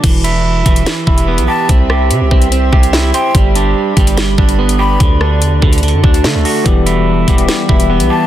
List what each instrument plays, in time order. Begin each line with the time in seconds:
0.04 808-style bass E1, clean electric guitar E3, ambient pad G4 B4 E5 B5, kick, closed hi-hat, crash
0.24 clean electric guitar E4, closed hi-hat
0.66 808-style bass E1, clean electric guitar E3, kick, closed hi-hat
0.76 closed hi-hat
0.86 clean electric guitar E3, snare, closed hi-hat
1.07 808-style bass E1, clean electric guitar E4, kick
1.18 closed hi-hat
1.28 clean electric guitar B3
1.38 808-style bass B1, closed hi-hat
1.48 clean electric guitar G4, flute A5
1.69 808-style bass C2, clean electric guitar C4, ambient pad G4 C5 C6, kick, closed hi-hat
1.90 clean electric guitar G4, cross-stick
2.11 808-style bass C3, closed hi-hat
2.21 808-style bass C2
2.31 808-style bass C2, clean electric guitar C4, kick
2.42 closed hi-hat
2.52 clean electric guitar C4, closed hi-hat
2.73 808-style bass C2, clean electric guitar G4, kick
2.83 closed hi-hat
2.93 clean electric guitar E4, snare
3.14 clean electric guitar C5, flute G5, closed hi-hat
3.35 808-style bass G1, clean electric guitar G3, ambient pad B4 D5 B5, kick, closed hi-hat
3.55 clean electric guitar D4, closed hi-hat
3.97 808-style bass G1, clean electric guitar G3, kick, closed hi-hat
4.07 closed hi-hat
4.17 clean electric guitar G3, snare, closed hi-hat
4.38 808-style bass G1, clean electric guitar D4, kick
4.49 closed hi-hat
4.59 clean electric guitar B3
4.69 closed hi-hat
4.79 clean electric guitar G4, flute B5
5.00 808-style bass D2, clean electric guitar D3, ambient pad F#4 A4 A5, kick, closed hi-hat
5.21 clean electric guitar D4, cross-stick
5.42 808-style bass E2, closed hi-hat
5.52 808-style bass D2
5.62 808-style bass D2, clean electric guitar D3, kick
5.73 closed hi-hat
5.78 closed hi-hat
5.83 clean electric guitar D3, closed hi-hat
5.88 closed hi-hat
5.93 808-style bass F#2
6.03 808-style bass D2, clean electric guitar D4, kick
6.14 closed hi-hat
6.24 808-style bass D3, clean electric guitar A3, snare
6.35 808-style bass D2
6.45 clean electric guitar F#4, open hi-hat
6.64 808-style bass E1, tine electric piano E3 G3 B3 G4, clean electric guitar E3, ambient pad G4 B4 E5 B5, kick, closed hi-hat
6.86 clean electric guitar E4, closed hi-hat
7.26 808-style bass E1, tine electric piano E3 G3 B3 G4, clean electric guitar E3, kick, closed hi-hat
7.37 tine electric piano E3 G3 B3 G4, closed hi-hat
7.48 clean electric guitar E3, snare, closed hi-hat
7.69 808-style bass E1, clean electric guitar E4, kick
7.80 closed hi-hat
7.90 clean electric guitar B3
8.00 808-style bass B1, closed hi-hat
8.10 clean electric guitar G4, flute A5